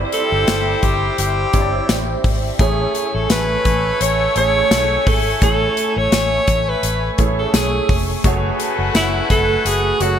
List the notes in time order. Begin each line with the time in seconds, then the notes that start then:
Already playing: G3 C4 D4 E4 G4 C5 D5 E5 G5 D6
0.12 A4, closed hi-hat
0.32 G1
0.48 G1, snare, closed hi-hat, tambourine
0.83 G1 G4, kick, closed hi-hat
1.18 G1 G4, closed hi-hat
1.53 G1 C4 D4 E4 G4 C#5, kick, closed hi-hat
1.61 D5
1.89 A1, snare, closed hi-hat, tambourine
2.24 G#1, kick, open hi-hat
2.59 A1 A3 C#4 E4 G#4 C#5 G#5 C#6, kick, closed hi-hat
2.95 closed hi-hat
3.14 A1 A4
3.30 A1 B4, snare, closed hi-hat, tambourine
3.65 A1, kick, closed hi-hat
4.01 A1 C#5, closed hi-hat
4.36 A1 A3 C#4 E4 G#4 C#5, closed hi-hat
4.71 B1, snare, closed hi-hat, tambourine
5.07 G#1 A4, kick, open hi-hat
5.42 A1 A3 C#4 E4 A4 C#5 G#5, kick, closed hi-hat
5.77 closed hi-hat
5.96 A1 C#5
6.12 A1, snare, closed hi-hat, tambourine
6.48 A1, kick, closed hi-hat
6.69 B4
6.83 A1, closed hi-hat
7.18 A1 A3 C#4 E4 G#4 C#5, kick, closed hi-hat
7.39 A4
7.53 B1 G#4, snare, closed hi-hat, tambourine
7.89 F1, kick, open hi-hat
8.24 F#1 A3 C#4 F#4 G#4 B4 C#5 F#5 G#5 C#6, kick, closed hi-hat
8.60 closed hi-hat
8.79 F#1
8.94 F#1 E4, snare, closed hi-hat, tambourine
9.30 F#1 A4, kick, closed hi-hat
9.65 F#1 G#4, closed hi-hat
10.00 F#1 A3 C#4 F#4 G#4 C#5, closed hi-hat